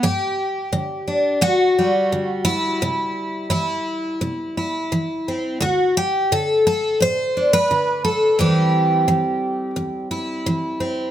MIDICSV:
0, 0, Header, 1, 2, 480
1, 0, Start_track
1, 0, Tempo, 697674
1, 23, Time_signature, 4, 2, 24, 8
1, 4823, Tempo, 689655
1, 7676, End_track
2, 0, Start_track
2, 0, Title_t, "Twelve-string acoustic guitar"
2, 0, Program_c, 0, 25
2, 21, Note_on_c, 0, 43, 70
2, 26, Note_on_c, 0, 67, 82
2, 452, Note_off_c, 0, 43, 0
2, 499, Note_on_c, 0, 50, 67
2, 740, Note_on_c, 0, 62, 43
2, 930, Note_off_c, 0, 50, 0
2, 972, Note_on_c, 0, 50, 56
2, 974, Note_off_c, 0, 62, 0
2, 977, Note_on_c, 0, 66, 103
2, 1217, Note_off_c, 0, 67, 0
2, 1228, Note_on_c, 0, 55, 51
2, 1405, Note_off_c, 0, 50, 0
2, 1462, Note_on_c, 0, 50, 59
2, 1683, Note_on_c, 0, 64, 101
2, 1890, Note_off_c, 0, 50, 0
2, 1935, Note_off_c, 0, 66, 0
2, 1940, Note_on_c, 0, 48, 71
2, 2369, Note_off_c, 0, 48, 0
2, 2400, Note_off_c, 0, 64, 0
2, 2408, Note_on_c, 0, 64, 75
2, 2416, Note_on_c, 0, 52, 61
2, 2848, Note_off_c, 0, 52, 0
2, 2897, Note_on_c, 0, 48, 56
2, 3134, Note_off_c, 0, 64, 0
2, 3147, Note_on_c, 0, 64, 49
2, 3333, Note_off_c, 0, 48, 0
2, 3385, Note_on_c, 0, 52, 57
2, 3634, Note_on_c, 0, 60, 42
2, 3819, Note_off_c, 0, 52, 0
2, 3842, Note_off_c, 0, 60, 0
2, 3856, Note_on_c, 0, 66, 80
2, 3866, Note_on_c, 0, 38, 72
2, 3870, Note_off_c, 0, 64, 0
2, 3872, Note_off_c, 0, 55, 0
2, 4101, Note_off_c, 0, 66, 0
2, 4108, Note_on_c, 0, 67, 85
2, 4298, Note_off_c, 0, 38, 0
2, 4347, Note_off_c, 0, 67, 0
2, 4348, Note_on_c, 0, 50, 65
2, 4350, Note_on_c, 0, 69, 79
2, 4579, Note_off_c, 0, 69, 0
2, 4587, Note_on_c, 0, 69, 86
2, 4779, Note_off_c, 0, 50, 0
2, 4819, Note_on_c, 0, 45, 53
2, 4827, Note_off_c, 0, 69, 0
2, 4832, Note_on_c, 0, 72, 106
2, 5072, Note_on_c, 0, 62, 46
2, 5184, Note_off_c, 0, 72, 0
2, 5187, Note_on_c, 0, 71, 102
2, 5257, Note_off_c, 0, 45, 0
2, 5309, Note_on_c, 0, 50, 60
2, 5541, Note_off_c, 0, 71, 0
2, 5544, Note_on_c, 0, 69, 81
2, 5740, Note_off_c, 0, 50, 0
2, 5761, Note_off_c, 0, 62, 0
2, 5781, Note_on_c, 0, 40, 71
2, 5785, Note_on_c, 0, 52, 52
2, 5786, Note_off_c, 0, 69, 0
2, 5788, Note_on_c, 0, 55, 52
2, 5793, Note_on_c, 0, 60, 48
2, 5794, Note_on_c, 0, 67, 70
2, 6216, Note_off_c, 0, 40, 0
2, 6254, Note_off_c, 0, 52, 0
2, 6263, Note_on_c, 0, 52, 68
2, 6697, Note_off_c, 0, 52, 0
2, 6739, Note_on_c, 0, 40, 60
2, 6978, Note_off_c, 0, 67, 0
2, 6981, Note_on_c, 0, 64, 53
2, 7174, Note_off_c, 0, 40, 0
2, 7227, Note_on_c, 0, 52, 65
2, 7455, Note_off_c, 0, 60, 0
2, 7464, Note_on_c, 0, 60, 48
2, 7659, Note_off_c, 0, 52, 0
2, 7676, Note_off_c, 0, 55, 0
2, 7676, Note_off_c, 0, 60, 0
2, 7676, Note_off_c, 0, 64, 0
2, 7676, End_track
0, 0, End_of_file